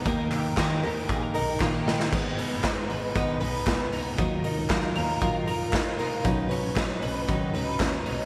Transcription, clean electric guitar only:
\new Staff \with { instrumentName = "Clean electric guitar" } { \time 4/4 \key gis \dorian \tempo 4 = 116 <dis ais'>8 g'8 dis'8 g'8 gis'16 ais'16 dis'8 eis'16 g'16 dis'8 | gis,8 b8 dis'8 b'8 dis'8 b'8 b8 dis'8 | dis8 dis'8 eis'8 ais'8 eis'8 ais'8 dis'8 eis'8 | r8 cis'8 dis'8 b'8 dis'8 b'8 cis'8 dis'8 | }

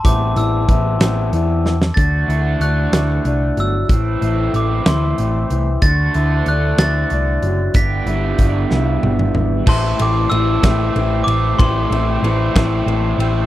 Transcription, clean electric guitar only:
\new Staff \with { instrumentName = "Clean electric guitar" } { \time 6/8 \key a \dorian \tempo 4. = 62 <e b c' e'>8 <e b c' e'>8 <e b c' e'>8 <e b c' e'>8 <e b c' e'>8 r8 | d8 e'8 d'8 e'8 d'8 fis8 | a,8 e'8 c'8 e'8 c'8 e8 | d8 e'8 d'8 e'8 d'8 fis8 |
g,8 e'8 b8 e'8 b8 e8 | <a, e a c' e'>8 <a c' e'>8 <e a c' e'>8 <a, e a c' e'>8 <e a c' e'>4 | <a, e a c' e'>8 <a c' e'>8 <e a c' e'>8 <a, e a c' e'>8 <e a c' e'>4 | }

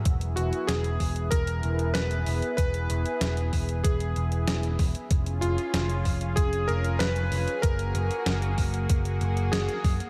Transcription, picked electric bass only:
\new Staff \with { instrumentName = "Picked electric bass" } { \clef bass \time 4/4 \key e \lydian \tempo 4 = 95 e,,8 e,,8 e,,8 e,,8 e,,8 e,,8 e,,8 e,,8 | e,,8 e,,8 e,,8 e,,8 e,,8 e,,8 e,,8 e,,8 | eis,,8 eis,,8 eis,,8 eis,,8 eis,,8 eis,,8 eis,,8 eis,,8 | fis,,8 fis,,8 fis,,8 fis,,8 fis,,8 fis,,8 fis,,8 fis,8 | }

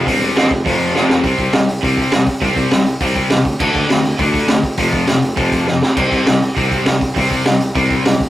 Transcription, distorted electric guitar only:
\new Staff \with { instrumentName = "Distorted electric guitar" } { \clef bass \time 4/4 \key f \lydian \tempo 4 = 203 <c g c'>4 <c g c'>8 r8 <f, c f>4 <f, c f>4 | <c g c'>4 <c g>8 r8 <c g c'>4 <c g>8 r8 | <c g c'>4 <c g>8 r8 <c g c'>4 <c g>8 r8 | <d a d'>4 <d a>8 r8 <d a d'>4 <d a>8 r8 |
<f, c f>4 <f, c>8 r8 <f, c f>4 <f, c>8 r8 | <c g c'>4 <c g>8 r8 <c g c'>4 <c g>8 r8 | <c g c'>4 <c g>8 r8 <c g c'>4 <c g>8 r8 | }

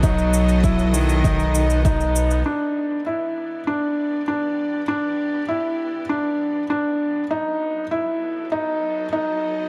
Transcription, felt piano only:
\new Staff \with { instrumentName = "Felt piano" } { \time 4/4 \key e \minor \tempo 4 = 99 dis'4 e'4 dis'4 dis'4 | d'4 e'4 d'4 d'4 | d'4 e'4 d'4 d'4 | dis'4 e'4 dis'4 dis'4 | }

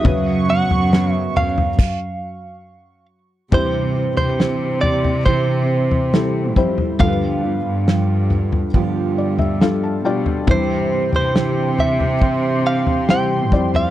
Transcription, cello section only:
\new Staff \with { instrumentName = "Cello section" } { \clef bass \time 4/4 \key fis \mixolydian \tempo 4 = 69 fis,8. fis,8. fis,8 r2 | \key c \major c8. c2~ c8. f,8 | g,8. g,4~ g,16 g,4. b,8 | c8. c2~ c8. f,8 | }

